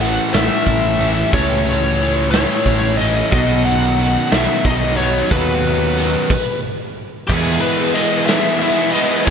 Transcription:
0.00 0.18 A1 medium
0.00 1.00 A2 medium
0.00 1.31 A2 medium
0.00 1.31 E3 loud
0.00 1.66 E3 medium
0.00 1.32 A3 medium
0.00 1.32 C#4 loud
0.00 1.32 A4 loud
0.00 0.34 F#5 medium
0.00 closed hi-hat medium
0.33 0.48 A1 medium
0.33 2.00 A3 medium
0.33 1.30 E5 loud
0.33 snare loud
0.33 closed hi-hat medium
0.67 1.23 A1 medium
0.67 2.33 E4 medium
0.67 kick medium
0.67 closed hi-hat medium
1.00 2.66 C#4 medium
1.00 closed hi-hat medium
1.32 2.45 C#2 medium
1.32 3.30 A2 medium
1.32 3.00 A2 medium
1.32 3.31 E3 medium
1.32 3.31 A3 medium
1.32 3.31 C#4 medium
1.32 3.31 A4 medium
1.32 2.30 C#5 medium
1.32 kick loud
1.32 closed hi-hat medium
1.67 2.00 E3 medium
1.67 closed hi-hat medium
2.00 3.33 E3 medium
2.00 closed hi-hat medium
2.31 3.33 A3 medium
2.31 2.95 C#5 medium
2.31 snare loud
2.31 closed hi-hat medium
2.66 3.22 A1 medium
2.66 3.33 E4 medium
2.66 kick medium
2.66 closed hi-hat medium
2.97 3.34 C#4 medium
2.97 3.29 D#5 medium
2.97 closed hi-hat medium
3.32 4.16 B1 medium
3.32 5.29 B2 medium
3.32 4.99 B2 medium
3.32 5.30 F#3 medium
3.32 5.30 B3 medium
3.32 5.30 D#4 loud
3.32 5.31 F#4 loud
3.32 3.63 D#5 medium
3.32 kick loud
3.32 closed hi-hat medium
3.65 3.98 D#3 medium
3.65 4.34 F#5 medium
3.65 closed hi-hat medium
3.99 5.63 D#3 medium
3.99 closed hi-hat medium
4.31 4.46 B1 medium
4.31 5.98 F#3 medium
4.31 4.65 E5 medium
4.31 snare loud
4.31 closed hi-hat loud
4.65 5.21 B1 medium
4.65 6.31 D#4 medium
4.65 4.97 D#5 medium
4.65 kick medium
4.65 closed hi-hat medium
4.97 6.31 B3 medium
4.97 5.32 C#5 medium
4.97 closed hi-hat medium
5.31 6.15 D#2 medium
5.31 6.31 B2 medium
5.31 6.29 B2 medium
5.31 6.29 F#3 loud
5.31 6.30 B3 medium
5.31 6.30 D#4 loud
5.31 6.30 F#4 loud
5.31 6.60 B4 medium
5.31 kick loud
5.31 closed hi-hat loud
5.64 5.97 D#3 medium
5.64 closed hi-hat medium
5.97 6.31 D#3 medium
5.97 closed hi-hat medium
6.30 kick loud
6.30 crash loud
7.27 7.57 E2 loud
7.27 8.95 E2 medium
7.27 8.29 E3 medium
7.27 8.29 G#3 medium
7.27 8.29 B3 medium
7.27 9.30 E4 medium
7.27 8.28 E4 medium
7.27 7.61 G#4 medium
7.27 9.30 B4 medium
7.27 9.30 G#5 medium
7.27 kick loud
7.27 crash loud
7.27 shaker loud
7.32 8.27 G#4 medium
7.47 shaker soft
7.62 8.28 E3 medium
7.62 7.96 B4 medium
7.62 ride medium
7.62 shaker soft
7.80 shaker medium
7.94 8.93 G#3 medium
7.94 8.26 D#5 loud
7.94 ride medium
8.14 shaker soft
8.26 9.30 E3 medium
8.26 8.61 B3 medium
8.26 8.62 E4 medium
8.26 8.63 G#4 medium
8.26 8.58 E5 loud
8.26 snare loud
8.26 ride loud
8.26 shaker medium
8.30 8.96 E3 medium
8.30 8.60 G#3 medium
8.47 shaker soft
8.59 9.26 G#3 medium
8.59 9.30 B3 medium
8.59 8.96 B3 medium
8.59 8.93 E4 medium
8.59 8.91 E5 loud
8.59 ride medium
8.64 8.92 G#4 medium
8.64 shaker soft
8.92 9.30 G#3 medium
8.92 9.27 E4 medium
8.92 9.28 G#4 medium
8.92 9.24 D#5 loud
8.92 ride medium
8.96 9.28 B3 medium
9.25 9.30 B1 medium
9.25 9.30 E2 medium
9.25 9.30 E3 medium
9.25 9.30 C#5 medium

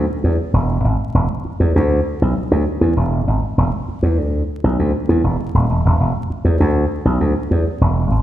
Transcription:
0.24 0.36 E2 medium
0.53 0.77 E1 medium
0.84 0.96 G#1 medium
1.14 1.26 E1 loud
1.45 muted slap bass stroke soft
1.60 1.72 E2 loud
1.76 1.99 D2 medium
2.22 2.33 B1 medium
2.36 muted slap bass stroke soft
2.51 2.63 D2 medium
2.81 2.93 E2 medium
2.97 3.20 E1 loud
3.27 3.39 G#1 medium
3.58 3.69 E1 loud
3.88 muted slap bass stroke soft
4.02 4.18 E2 medium
4.18 4.42 D2 medium
4.64 4.76 B1 medium
4.79 4.91 D2 medium
5.09 5.21 E2 medium
5.24 5.36 E1 medium
5.54 5.66 D#1 medium
5.70 5.82 E1 medium
5.85 5.97 D#1 medium
6.00 6.12 E1 loud
6.30 muted slap bass stroke soft
6.45 6.57 E2 loud
6.60 6.84 D2 medium
7.05 7.18 B1 medium
7.21 7.33 D2 loud
7.51 7.63 E2 loud
7.81 8.05 E1 medium
8.11 8.22 G#1 medium

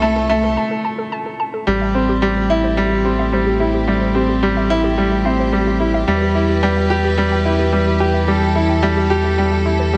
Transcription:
0.00 0.57 C2 medium
0.00 0.54 C3 medium
0.00 0.02 A3 loud
0.00 0.27 A3 loud
0.00 0.54 C4 medium
0.00 0.54 E4 medium
0.00 1.69 E4 loud
0.00 0.56 A4 medium
0.00 0.15 A5 loud
0.16 0.25 A4 medium
0.29 0.55 A3 loud
0.29 0.43 A5 loud
0.44 0.52 A4 medium
0.57 0.70 A5 loud
0.71 0.80 A4 medium
0.85 0.98 A5 loud
0.98 1.07 A4 medium
1.12 1.25 A5 loud
1.26 1.35 A4 medium
1.40 1.53 A5 loud
1.54 1.62 A4 medium
1.67 6.05 A1 medium
1.67 1.93 G3 loud
1.67 6.04 A3 medium
1.67 6.04 C4 medium
1.67 9.97 G4 medium
1.67 1.73 G4 medium
1.82 1.87 E5 medium
1.95 2.10 C4 medium
1.95 2.04 C5 medium
2.09 2.18 G4 loud
2.22 2.48 G3 loud
2.22 2.28 G4 medium
2.37 2.42 G4 medium
2.50 2.66 E4 loud
2.50 2.55 E5 loud
2.64 2.73 C5 medium
2.77 3.04 G3 loud
2.77 2.86 G4 medium
2.91 2.97 G4 medium
3.05 3.31 C4 medium
3.05 3.10 G4 medium
3.19 3.24 E5 loud
3.33 3.59 G3 medium
3.33 3.42 C5 medium
3.47 3.55 G4 loud
3.60 3.76 E4 medium
3.60 3.66 G4 medium
3.74 3.79 G4 medium
3.88 4.14 G3 medium
3.88 3.93 E5 loud
4.02 4.10 C5 medium
4.15 4.31 C4 medium
4.15 4.24 G4 loud
4.29 4.34 G4 medium
4.43 4.69 G3 medium
4.43 4.48 G4 medium
4.57 4.62 E5 loud
4.70 4.86 E4 loud
4.70 4.79 C5 medium
4.84 4.93 G4 loud
4.98 5.13 G3 medium
4.98 5.03 G4 medium
5.12 5.17 G4 medium
5.25 5.51 C4 medium
5.25 5.31 E5 loud
5.39 5.48 C5 medium
5.53 5.79 G3 medium
5.53 5.62 G4 loud
5.67 5.72 G4 medium
5.80 5.96 E4 medium
5.80 5.86 G4 medium
5.94 5.99 E5 loud
6.07 9.97 E2 medium
6.07 9.97 E3 medium
6.07 6.34 G3 loud
6.07 9.97 E4 medium
6.07 8.26 B4 medium
6.07 6.17 E5 medium
6.22 6.30 G4 loud
6.35 6.51 E4 medium
6.35 6.41 G4 medium
6.49 6.54 G4 medium
6.63 6.89 G3 loud
6.63 6.68 G5 loud
6.77 6.85 E5 medium
6.90 7.06 G4 loud
6.90 6.99 G4 loud
7.04 7.09 G4 medium
7.18 7.44 G3 loud
7.18 7.23 G4 medium
7.32 7.37 G5 loud
7.45 7.71 E4 medium
7.45 7.54 E5 medium
7.59 7.68 G4 loud
7.73 7.99 G3 medium
7.73 7.78 G4 medium
7.87 7.92 G4 medium
8.00 8.16 G4 medium
8.00 8.06 G5 loud
8.14 8.23 E5 medium
8.28 8.54 G3 medium
8.28 8.37 G4 loud
8.28 9.97 A4 medium
8.41 8.47 G4 medium
8.55 8.71 E4 medium
8.55 8.61 G4 medium
8.69 8.74 G5 loud
8.83 9.09 G3 loud
8.83 8.92 E5 medium
8.97 9.06 G4 loud
9.10 9.26 G4 loud
9.10 9.16 G4 medium
9.24 9.30 G4 medium
9.38 9.54 G3 medium
9.38 9.43 G5 loud
9.52 9.61 E5 medium
9.65 9.92 E4 medium
9.65 9.71 B5 medium
9.79 9.92 B4 loud
9.93 9.97 G3 medium
9.93 9.97 G4 loud

